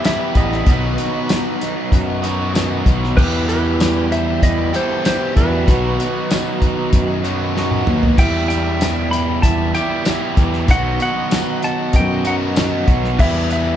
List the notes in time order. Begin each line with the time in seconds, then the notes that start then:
0.02 E2 B2 E3 G3 B3 E4 B4, snare, closed hi-hat, tambourine
0.06 G4 E5
0.19 E3 G3 B3 E4
0.34 A1 E3 G3 B3 E4 B4 D#5, kick, closed hi-hat
0.52 snare
0.66 B1 B2 D#3 F#3 B3 D#4 F#4, kick, closed hi-hat
0.97 F#3 B3 D#4 F#4, closed hi-hat
1.13 B3 D#4 F#4
1.29 B2 F#3 B3 D#4 F#4, snare, closed hi-hat, tambourine
1.61 F#3 B3 D#4 F#4, snare, closed hi-hat
1.76 B3 D#4 F#4
1.92 F#2, kick, closed hi-hat
2.06 B3 D#4 F#4
2.22 B2 D#3 F#3 B3 D#4 F#4, closed hi-hat
2.26 F#4
2.37 D#4 F#4
2.41 B3
2.53 B2 D#3 F#3 B3 D#4 F#4, snare, closed hi-hat, tambourine
2.69 B3 D#4 F#4
2.84 B1 F#3 B3 D#4 F#4, kick, closed hi-hat
3.04 snare
3.16 E2 B2 E3 G3 B3 E4 G4 B4, kick, crash
3.48 E3 G3 E4 G4 B4, closed hi-hat
3.64 E3 G3 E4 G4
3.78 E2 B2 E3 G3 E4 G4, snare, closed hi-hat, tambourine
4.10 E3 G3 E4 G4 C5 E5, closed hi-hat
4.26 E3 G3 E4 G4
4.42 E2 B4 D#5, kick, closed hi-hat
4.56 E3 G3 E4 G4
4.72 E3 G3 B3 E4 G4 A4, closed hi-hat
4.76 E2 B2 E3 C5
4.87 E3 G3 E4 G4
5.03 E2 B2 E3 G3 E4 G4 C5, snare, closed hi-hat, tambourine
5.07 B3
5.20 E3 G3 E4 G4
5.34 E2 E3 G3 E4 F#4 G4 B4, kick, closed hi-hat
5.65 B1 B2 D#3 F#3 B3 D#4 F#4, kick, closed hi-hat
5.97 F#3 B3 D#4 F#4, closed hi-hat
6.13 B3 D#4 F#4
6.28 B2 F#3 B3 D#4 F#4, snare, closed hi-hat, tambourine
6.59 F#3 B3 D#4 F#4, kick, closed hi-hat
6.75 B3 D#4 F#4
6.93 F#2, kick, closed hi-hat
7.07 D#4 F#4
7.11 B3
7.23 D#3 F#3 B3 D#4 F#4, closed hi-hat
7.27 B2 F#3
7.38 B3 D#4 F#4
7.54 B2 D#3 F#3 B3 D#4 F#4, snare
7.70 B3 D#4 F#4, high tom
7.85 D#2 F#3 B3 D#4 F#4, mid tom
8.03 floor tom
8.16 E2 B2 E3 G3 B3 E4 G4 E5 G5, kick, closed hi-hat, crash
8.48 E3 G3 E4 G4 E5 G5, closed hi-hat
8.64 E3 G3 E4 G4
8.79 E2 B2 E3 G3 E4 G4, snare, closed hi-hat, tambourine
9.10 E3 G3 E4 G4 G5 B5, closed hi-hat
9.26 E3 G3 E4 G4
9.42 E2 E5 A5, kick, closed hi-hat
9.58 E3 G3 E4 G4
9.73 B2 E3 G3 B3 E4 G4 E5 G5, closed hi-hat
9.78 E2
9.89 E3 G3 E4 G4
10.04 E2 B2 E3 G3 B3 E4 G4, snare, closed hi-hat, tambourine
10.21 E3 G3 E4 G4
10.37 E2 E3 G3 E4 G4, kick, closed hi-hat
10.53 snare
10.67 B1 B2 D#3 F#3 B3 D#4 F#4 D#5, kick, closed hi-hat
10.71 F#5
10.99 F#3 B3 D#4 F#4 D#5 F#5, closed hi-hat
11.15 B3 D#4 F#4
11.30 B2 F#3 B3 D#4 F#4, snare, closed hi-hat, tambourine
11.62 F#3 B3 D#4 F#4 F#5 A5, snare, closed hi-hat
11.78 B3 D#4 F#4
11.93 F#2 D#5 G5, kick, closed hi-hat
12.08 B3 D#4 F#4
12.24 B2 D#3 F#3 B3 D#4 F#4 D#5 F#5, closed hi-hat
12.29 B2
12.39 B3 D#4 F#4
12.55 B2 D#3 F#3 B3 D#4 F#4, snare, closed hi-hat, tambourine
12.71 B3 D#4 F#4
12.86 B1 F#3 B3 D#4 F#4, kick, closed hi-hat
13.04 snare
13.18 E2 B2 E3 G3 B3 E4 G4 B4 E5, kick, crash
13.49 E3 G3 E4 G4 B4 E5, closed hi-hat
13.65 E3 G3 E4 G4